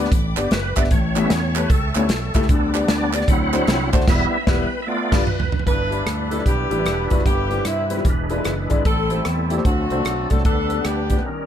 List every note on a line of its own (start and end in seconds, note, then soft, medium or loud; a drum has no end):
0.00 0.11 G3 soft
0.00 0.11 B3 soft
0.00 0.12 D4 soft
0.00 0.88 D5 medium
0.00 3.25 G5 medium
0.00 0.90 B5 medium
0.00 0.90 D6 medium
0.05 snare soft
0.12 0.33 A1 loud
0.12 kick loud
0.12 closed hi-hat medium
0.37 0.49 G1 medium
0.37 0.46 B3 medium
0.37 0.46 D4 medium
0.37 0.46 G4 medium
0.37 0.52 G4 medium
0.37 0.46 D5 medium
0.37 clap loud
0.37 closed hi-hat medium
0.51 0.73 F#1 medium
0.51 0.79 B4 medium
0.51 snare loud
0.51 closed hi-hat medium
0.76 0.89 G1 medium
0.76 0.86 B3 medium
0.76 0.86 D4 medium
0.76 0.86 G4 medium
0.76 0.84 D5 medium
0.76 0.86 E5 medium
0.76 kick medium
0.76 clap loud
0.76 closed hi-hat medium
0.84 snare soft
0.91 1.25 A1 loud
0.91 1.52 A2 medium
0.91 1.16 C#5 medium
0.91 2.48 E5 medium
0.91 2.48 A5 medium
0.91 2.48 C#6 medium
0.91 kick loud
0.91 closed hi-hat medium
1.16 1.39 G3 medium
1.16 1.25 A3 medium
1.16 1.40 B3 soft
1.16 1.40 C#4 medium
1.16 1.25 E4 medium
1.16 1.26 G4 medium
1.16 1.26 C#5 medium
1.16 1.31 E5 medium
1.16 clap medium
1.16 closed hi-hat medium
1.30 1.64 E2 loud
1.30 1.59 C#5 medium
1.30 snare loud
1.30 closed hi-hat loud
1.55 1.65 A3 medium
1.55 1.65 E4 medium
1.55 1.65 G4 medium
1.55 1.70 B4 medium
1.55 1.65 C#5 medium
1.55 clap loud
1.55 closed hi-hat medium
1.70 1.91 C#2 medium
1.70 2.71 A4 loud
1.70 kick loud
1.70 closed hi-hat medium
1.95 2.08 D2 loud
1.95 2.09 G3 medium
1.95 2.05 A3 medium
1.95 2.09 B3 soft
1.95 2.09 C#4 medium
1.95 2.05 E4 medium
1.95 2.05 G4 medium
1.95 2.05 C#5 medium
1.95 clap medium
1.95 closed hi-hat medium
2.09 2.31 B1 medium
2.09 snare loud
2.09 closed hi-hat medium
2.34 2.47 C#2 loud
2.34 2.44 A3 loud
2.34 2.44 E4 medium
2.34 2.44 G4 medium
2.34 2.44 A4 loud
2.34 kick medium
2.34 clap loud
2.34 closed hi-hat medium
2.42 snare soft
2.49 2.83 D2 loud
2.49 3.10 D3 medium
2.49 3.11 G3 medium
2.49 3.11 B3 soft
2.49 3.12 D4 medium
2.49 3.27 D5 medium
2.49 3.28 B5 medium
2.49 3.28 D6 medium
2.49 kick loud
2.49 closed hi-hat medium
2.74 2.83 B3 medium
2.74 2.84 D4 medium
2.74 2.84 G4 medium
2.74 2.84 D5 medium
2.74 clap loud
2.74 closed hi-hat medium
2.88 3.23 D2 medium
2.88 3.30 D5 medium
2.88 snare loud
2.88 closed hi-hat loud
3.13 3.23 B3 medium
3.13 3.23 D4 medium
3.13 3.23 G4 medium
3.13 3.24 D5 medium
3.13 clap loud
3.13 closed hi-hat medium
3.21 snare soft
3.28 3.62 D2 medium
3.28 3.89 D3 medium
3.28 3.90 F#3 medium
3.28 3.90 C4 medium
3.28 3.91 E4 medium
3.28 4.07 D5 medium
3.28 4.07 F#5 medium
3.28 3.90 F#5 loud
3.28 4.07 A5 medium
3.28 4.07 C6 medium
3.28 kick loud
3.28 closed hi-hat medium
3.53 3.62 A3 medium
3.53 3.63 D4 medium
3.53 3.63 F#4 medium
3.53 3.63 C5 medium
3.53 clap medium
3.53 closed hi-hat medium
3.67 3.89 C2 loud
3.67 snare loud
3.67 closed hi-hat medium
3.93 4.06 D2 loud
3.93 4.02 A3 loud
3.93 4.02 D4 medium
3.93 4.03 F#4 medium
3.93 4.03 C5 loud
3.93 kick medium
3.93 clap loud
3.93 closed hi-hat medium
4.00 snare soft
4.07 4.25 E1 loud
4.07 4.37 G3 medium
4.07 4.38 B3 medium
4.07 4.38 E4 medium
4.07 4.86 B4 medium
4.07 4.86 E5 medium
4.07 4.46 E5 loud
4.07 5.65 G5 medium
4.07 5.64 B5 medium
4.07 kick loud
4.07 snare loud
4.07 crash medium
4.47 4.64 E1 loud
4.47 4.64 G3 loud
4.47 4.64 B3 loud
4.47 4.64 E4 loud
4.47 4.64 B4 loud
4.47 4.80 B4 loud
4.47 kick loud
4.47 snare loud
4.82 4.87 E5 medium
4.82 5.65 F5 medium
4.87 5.16 A3 medium
4.87 5.17 B3 medium
4.87 5.17 F4 medium
4.87 5.66 D5 medium
4.87 5.24 D5 loud
5.12 5.22 G1 loud
5.12 5.22 G3 loud
5.12 5.22 D4 loud
5.12 5.22 F4 loud
5.12 5.22 B4 loud
5.12 kick loud
5.12 snare loud
5.12 crash medium
5.27 5.64 B4 medium
5.27 mid tom loud
5.40 floor tom medium
5.52 floor tom loud
5.59 floor tom medium
5.66 6.00 G1 loud
5.66 6.28 G2 medium
5.66 7.22 G3 medium
5.66 7.23 D4 medium
5.66 6.42 D4 medium
5.66 7.23 E4 soft
5.66 6.42 E4 medium
5.66 7.22 B4 medium
5.66 6.04 B4 medium
5.66 kick loud
5.66 closed hi-hat medium
5.91 6.01 G3 medium
5.91 6.01 D4 medium
5.91 6.01 E4 medium
5.91 6.01 B4 medium
5.91 closed hi-hat soft
6.06 6.40 D2 medium
6.06 cross-stick loud
6.06 closed hi-hat medium
6.31 6.36 G3 medium
6.31 6.36 D4 medium
6.31 6.36 E4 medium
6.31 6.45 A4 medium
6.31 6.36 D5 medium
6.31 closed hi-hat medium
6.38 6.49 G3 medium
6.38 6.49 D4 medium
6.38 6.49 E4 medium
6.38 6.50 B4 medium
6.38 cross-stick soft
6.46 6.67 B1 medium
6.46 7.22 B3 medium
6.46 7.22 E4 medium
6.46 7.11 G4 medium
6.46 kick medium
6.46 closed hi-hat medium
6.71 6.84 A1 medium
6.71 6.76 G3 medium
6.71 6.76 D4 medium
6.71 6.76 E4 medium
6.71 6.76 G4 medium
6.71 closed hi-hat medium
6.79 6.89 G3 medium
6.79 6.90 D4 soft
6.79 6.90 E4 medium
6.79 6.90 B4 medium
6.86 7.07 E1 medium
6.86 cross-stick loud
6.86 closed hi-hat medium
7.10 7.24 F#1 medium
7.10 7.20 G3 medium
7.10 7.20 D4 medium
7.10 7.21 E4 medium
7.10 7.26 F#4 medium
7.10 7.21 B4 medium
7.10 kick medium
7.10 closed hi-hat medium
7.19 cross-stick soft
7.25 7.60 G1 loud
7.25 7.87 G2 medium
7.25 8.04 C3 soft
7.25 8.04 G3 soft
7.25 7.66 B3 medium
7.25 7.32 D#4 soft
7.25 7.65 E4 medium
7.25 7.66 G4 medium
7.25 8.04 B4 medium
7.25 kick medium
7.25 closed hi-hat medium
7.31 8.04 E4 soft
7.50 7.60 G3 medium
7.50 7.60 C4 soft
7.50 7.60 E4 medium
7.50 7.60 B4 medium
7.50 closed hi-hat soft
7.65 7.99 G2 medium
7.65 8.03 B3 soft
7.65 8.03 C4 soft
7.65 8.03 E4 medium
7.65 cross-stick medium
7.65 closed hi-hat medium
7.90 7.95 G3 medium
7.90 7.95 C4 medium
7.90 7.96 E4 medium
7.90 7.96 B4 medium
7.90 closed hi-hat medium
7.97 8.05 G3 medium
7.97 8.05 C4 medium
7.97 8.05 E4 soft
7.97 8.05 G4 medium
7.97 cross-stick soft
8.04 8.39 E1 medium
8.04 8.66 E3 medium
8.04 8.84 G#3 medium
8.04 8.84 D4 medium
8.04 8.84 E4 medium
8.04 8.12 A#4 medium
8.04 kick loud
8.04 closed hi-hat medium
8.10 8.86 B4 medium
8.30 8.35 G#3 medium
8.30 8.35 D4 medium
8.30 8.36 E4 medium
8.30 8.36 B4 medium
8.30 closed hi-hat medium
8.37 8.49 G#3 medium
8.37 8.49 D4 medium
8.37 8.49 E4 medium
8.37 8.49 B4 medium
8.44 8.67 F#1 medium
8.44 cross-stick loud
8.44 closed hi-hat medium
8.70 8.83 G#1 medium
8.70 8.79 G#3 medium
8.70 8.80 D4 medium
8.70 8.80 E4 medium
8.70 8.80 D5 medium
8.70 kick medium
8.70 closed hi-hat medium
8.85 9.19 A1 loud
8.85 9.47 A2 medium
8.85 9.64 G3 medium
8.85 9.64 C4 medium
8.85 9.62 C4 medium
8.85 9.63 E4 medium
8.85 9.62 E4 medium
8.85 9.63 A4 medium
8.85 9.23 A4 medium
8.85 kick loud
8.85 closed hi-hat medium
9.10 9.20 A3 medium
9.10 9.20 E4 medium
9.10 9.20 G4 medium
9.10 9.20 C5 medium
9.10 closed hi-hat medium
9.25 9.60 E2 medium
9.25 cross-stick loud
9.25 closed hi-hat medium
9.50 9.55 A3 medium
9.50 9.55 E4 medium
9.50 9.55 G4 medium
9.50 9.64 G4 medium
9.50 9.55 D5 medium
9.50 closed hi-hat medium
9.57 9.65 A3 medium
9.57 9.65 E4 soft
9.57 9.65 G4 medium
9.57 9.65 C5 medium
9.57 cross-stick soft
9.65 9.87 D2 medium
9.65 10.26 D3 medium
9.65 10.43 F#3 medium
9.65 10.41 A3 medium
9.65 10.43 C4 medium
9.65 10.41 C4 medium
9.65 10.43 D4 medium
9.65 10.31 F#4 medium
9.65 10.43 A4 medium
9.65 kick medium
9.65 closed hi-hat medium
9.90 10.03 C2 medium
9.90 9.96 A3 medium
9.90 9.95 D4 medium
9.90 9.96 F#4 medium
9.90 9.96 C5 medium
9.90 closed hi-hat medium
9.98 10.09 A3 medium
9.98 10.09 D4 medium
9.98 10.09 F#4 soft
9.98 10.09 A4 medium
10.05 10.27 B1 medium
10.05 cross-stick medium
10.05 closed hi-hat medium
10.30 10.43 C2 medium
10.30 10.40 A3 medium
10.30 10.40 D4 medium
10.30 10.40 F#4 medium
10.30 10.44 A4 medium
10.30 10.40 A4 medium
10.30 kick medium
10.30 closed hi-hat medium
10.38 cross-stick soft
10.45 10.79 D2 medium
10.45 11.07 D3 medium
10.45 11.23 G3 medium
10.45 11.23 B3 soft
10.45 11.23 D4 soft
10.45 10.84 D4 medium
10.45 10.82 A4 medium
10.45 11.23 B4 medium
10.45 kick loud
10.45 closed hi-hat medium
10.70 10.80 B3 medium
10.70 10.80 D4 soft
10.70 10.80 G4 medium
10.70 10.80 D5 medium
10.70 closed hi-hat medium
10.85 11.19 D2 medium
10.85 11.22 B3 soft
10.85 11.22 D4 soft
10.85 11.25 G4 medium
10.85 cross-stick medium
10.85 closed hi-hat medium
11.10 11.15 B3 medium
11.10 11.15 D4 medium
11.10 11.15 G4 medium
11.10 11.15 D5 medium
11.10 kick medium
11.10 closed hi-hat medium
11.17 11.25 B3 medium
11.17 11.25 D4 soft
11.17 11.25 G4 medium
11.17 11.25 D5 medium
11.17 cross-stick soft
11.25 11.46 D#3 medium
11.25 11.46 G3 medium
11.25 11.46 C#4 soft
11.25 11.46 D#4 medium
11.25 11.46 A#4 medium